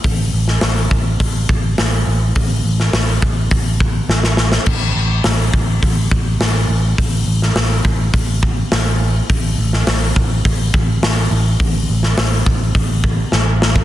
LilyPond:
<<
  \new Staff \with { instrumentName = "Picked electric bass" } { \clef bass \time 4/4 \key c \major \tempo 4 = 104 a,,8 a,,8 a,,8 a,,8 a,,8 a,,8 a,,8 a,,8 | a,,8 a,,8 a,,8 a,,8 a,,4 a,,4 | a,,8 a,,8 a,,8 a,,8 a,,8 a,,8 a,,8 a,,8 | a,,8 a,,8 a,,8 a,,8 a,,4 a,,4 |
a,,8 a,,8 a,,8 a,,8 a,,8 a,,8 a,,8 a,,8 | a,,8 a,,8 a,,8 a,,8 a,,4 a,,4 | }
  \new DrumStaff \with { instrumentName = "Drums" } \drummode { \time 4/4 <hho bd>8. sn16 <hho sn>8 bd8 <hho bd>8 bd8 <hho sn>4 | <hho bd>8. sn16 <hho sn>8 bd8 <hho bd>8 bd8 sn16 sn16 sn16 sn16 | <cymc bd>4 <hho sn>8 bd8 <hho bd>8 bd8 <hho sn>4 | <hho bd>8. sn16 <hho sn>8 bd8 <hho bd>8 bd8 <hho sn>4 |
<hho bd>8. sn16 <hho sn>8 bd8 <hho bd>8 bd8 <hho sn>4 | <hho bd>8. sn16 <hho sn>8 bd8 <hho bd>8 bd8 sn8 sn16 bd16 | }
>>